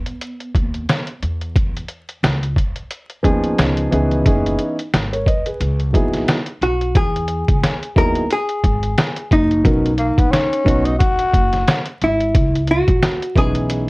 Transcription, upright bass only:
0.55 0.84 D#2 medium
1.22 1.81 E2 medium
2.23 2.53 C#2 medium
3.24 3.54 D#2 medium
3.58 3.88 C#2 medium
3.92 4.22 C#2 medium
4.26 4.55 F#1 medium
4.94 5.23 G#1 medium
5.60 5.94 C#2 loud
5.94 6.24 A#1 medium
6.61 6.91 B1 medium
6.95 7.42 E2 loud
7.48 7.61 C#2 medium
7.96 8.26 D#2 medium
8.64 8.93 G#1 medium
9.31 9.61 F#1 medium
9.65 10.11 B1 loud
10.18 10.31 A#1 medium
10.66 10.96 B1 medium
11.34 11.63 F#1 medium
12.02 12.31 G#1 medium
12.35 12.81 C#2 medium
12.88 13.00 A#1 medium
13.36 13.90 B1 medium

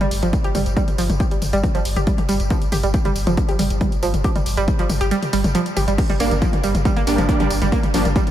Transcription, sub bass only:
0.11 0.22 G1 loud
0.23 0.33 G1 medium
0.55 0.65 G1 loud
0.66 0.76 G1 medium
0.98 1.09 G1 loud
1.10 1.20 G1 medium
1.42 1.52 G1 loud
1.53 1.63 G1 medium
1.85 1.96 G1 loud
1.96 2.07 G1 medium
2.29 2.39 G1 loud
2.40 2.50 G1 medium
2.72 2.83 G1 medium
2.83 2.94 G1 medium
3.16 3.26 G1 loud
3.27 3.37 G1 medium
3.59 3.70 G1 loud
3.70 3.81 G1 medium
4.03 4.13 G1 loud
4.14 4.24 G1 medium
4.46 4.57 G1 loud
4.57 4.68 G1 medium
4.90 5.00 G1 loud
5.01 5.11 G1 medium
5.33 5.44 G1 loud
5.44 5.55 G1 medium
5.77 5.87 G1 loud
5.88 5.98 G1 medium
6.20 6.31 G1 loud
6.31 6.42 G1 medium
6.63 6.74 G1 loud
6.75 6.85 G1 medium
7.07 7.18 G1 loud
7.18 7.29 G1 medium
7.50 7.61 G1 loud
7.62 7.72 G1 medium
7.94 8.04 G1 loud
8.05 8.15 G1 medium

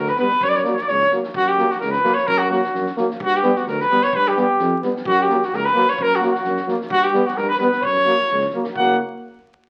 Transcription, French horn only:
0.17 0.27 B3 medium
0.64 0.73 A#3 medium
1.12 1.21 A#3 medium
1.58 1.67 A#3 medium
2.04 2.13 A#3 medium
2.51 2.60 A#3 medium
2.97 3.06 A#3 medium
3.43 3.52 B3 medium
3.91 4.00 B3 medium
4.37 4.46 B3 medium
4.82 4.91 B3 medium
5.28 5.38 A#3 medium
5.74 5.83 A#3 medium
6.21 6.30 A#3 medium
6.68 6.77 A#3 medium
7.14 7.23 B3 medium
7.61 7.70 B3 medium
8.06 8.15 A#3 medium
8.55 8.64 A#3 medium
8.78 8.98 A#3 medium

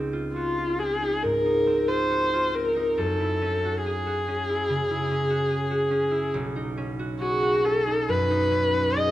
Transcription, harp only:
0.00 3.02 C#2 soft
0.00 0.79 C4 soft
0.00 1.01 D#4 soft
0.00 0.12 F4 soft
0.13 0.57 F4 soft
0.36 0.73 F#4 soft
0.58 1.87 F4 soft
0.81 1.65 C4 soft
1.02 1.44 D#4 soft
1.24 3.02 G#2 soft
1.45 2.75 D#4 soft
1.67 2.53 C4 soft
1.88 2.32 F4 soft
2.11 2.48 F#4 soft
2.33 3.02 F4 soft
2.54 3.02 C4 soft
2.76 3.01 D#4 soft
2.98 6.37 F#2 soft
3.20 4.48 E4 soft
3.42 4.27 C#4 soft
3.64 4.05 F#4 soft
3.86 4.22 G#4 soft
4.06 5.29 F#4 soft
4.28 5.10 C#4 soft
4.49 4.90 E4 soft
4.69 6.37 C#3 soft
4.91 6.10 E4 soft
5.11 5.90 C#4 soft
5.30 5.69 F#4 soft
5.51 5.85 G#4 soft
5.71 6.98 F#4 soft
5.91 6.76 C#4 soft
6.11 6.37 E4 soft
6.34 9.11 B1 soft
6.56 7.86 D#4 soft
6.77 7.64 C#4 soft
6.99 7.42 F#4 soft
7.21 7.58 G#4 soft
7.43 8.72 F#4 soft
7.66 8.50 C#4 soft
7.87 8.29 D#4 soft
8.08 9.11 F#2 soft
8.30 9.11 D#4 soft
8.51 9.11 C#4 soft
8.74 9.11 F#4 soft
8.96 9.11 G#4 soft

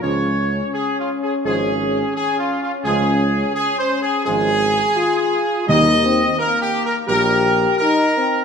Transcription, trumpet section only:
0.02 0.69 C#5 medium
0.74 0.96 G#4 medium
0.99 1.10 F4 medium
1.22 1.33 G#4 medium
1.45 2.11 G#4 loud
2.15 2.37 G#4 loud
2.39 2.61 F4 medium
2.62 2.73 F4 medium
2.84 3.51 G#4 loud
3.55 3.77 G#4 loud
3.79 4.01 C5 loud
4.01 4.23 G#4 loud
4.24 5.64 G#4 loud
5.69 6.35 D#5 loud
6.39 6.60 A#4 loud
6.62 6.84 G4 loud
6.85 6.96 A#4 loud
7.08 7.74 A#4 loud
7.78 8.45 A#4 loud

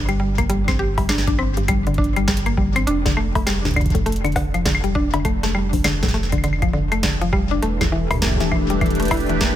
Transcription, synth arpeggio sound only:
0.09 0.17 G3 medium
0.20 0.29 G3 medium
0.38 0.44 A#3 medium
0.50 0.59 G3 medium
0.68 0.74 C4 medium
0.79 0.85 G4 loud
0.98 1.03 G3 medium
1.09 1.18 D4 medium
1.27 1.31 D4 medium
1.39 1.53 C4 medium
1.57 1.63 G2 medium
1.68 1.82 G3 medium
1.87 1.92 D3 medium
1.98 2.07 D4 medium
2.16 2.25 G3 medium
2.28 2.37 G3 medium
2.46 2.52 A#3 medium
2.57 2.67 G3 medium
2.76 2.82 C4 medium
2.87 2.93 D4 loud
3.05 3.11 D3 medium
3.17 3.26 A3 medium
3.35 3.39 A3 medium
3.46 3.60 G3 medium
3.65 3.71 D2 medium
3.76 3.90 D3 medium
3.95 4.00 A2 medium
4.06 4.15 A3 medium
4.24 4.33 D3 medium
4.36 4.45 D3 medium
4.54 4.60 F3 medium
4.65 4.75 D3 medium
4.84 4.89 G3 medium
4.95 5.01 D4 loud
5.13 5.19 D3 medium
5.25 5.34 A3 medium
5.43 5.47 A3 medium
5.55 5.68 G3 medium
5.73 5.79 D2 medium
5.84 5.98 D3 medium
6.03 6.08 A2 medium
6.14 6.23 A3 medium
6.32 6.41 D3 medium
6.44 6.53 D3 medium
6.62 6.68 F3 medium
6.73 6.83 D3 medium
6.92 7.00 A3 medium
7.03 7.17 D3 medium
7.21 7.25 F3 loud
7.33 7.38 G3 loud
7.51 7.55 D4 medium
7.62 7.76 A3 medium
7.81 7.87 E2 medium
7.92 8.06 E3 medium
8.11 8.16 A#2 medium
8.22 8.31 A#3 medium
8.40 8.49 E3 medium
8.52 8.61 E3 medium
8.70 8.76 G3 medium
8.81 8.91 E3 medium
9.00 9.05 A3 medium
9.11 9.17 E4 loud
9.29 9.35 E3 medium
9.41 9.50 A#3 medium

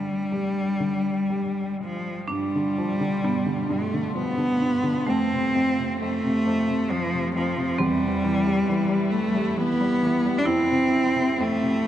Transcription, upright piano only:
0.00 2.27 G2 soft
0.00 0.79 D3 soft
0.32 1.29 G3 soft
0.80 2.26 D3 soft
1.30 2.27 G3 soft
2.29 3.22 G2 soft
2.55 2.99 D3 soft
2.78 4.13 F3 medium
3.00 3.44 D3 soft
3.23 3.67 G2 soft
3.46 3.92 D3 soft
3.69 4.60 G2 soft
3.94 4.36 D3 soft
4.15 5.05 F3 soft
4.38 4.82 D3 soft
4.61 5.06 G2 soft
4.83 5.06 D3 medium
5.07 5.53 F2 medium
5.33 5.77 C3 soft
5.55 6.00 F2 medium
5.78 6.23 C3 soft
6.02 6.45 F2 medium
6.24 6.67 C3 medium
6.46 6.87 F2 medium
6.68 7.12 C3 soft
6.89 7.34 F2 soft
7.14 7.56 C3 soft
7.36 7.77 F2 medium
7.57 7.78 C3 soft
7.80 10.42 E2 medium
8.02 9.74 C3 soft
8.24 8.68 E3 medium
8.47 8.88 G3 medium
8.69 9.56 E3 medium
8.90 9.33 G3 medium
9.35 9.79 G3 soft
9.57 10.01 E3 medium
9.81 10.24 G3 medium
10.03 10.45 E3 medium
10.25 10.46 G3 medium
10.47 11.37 F2 medium
10.71 11.14 C3 soft
10.92 11.87 E4 medium
11.15 11.60 C3 soft
11.38 11.86 F2 medium
11.62 11.87 C3 soft

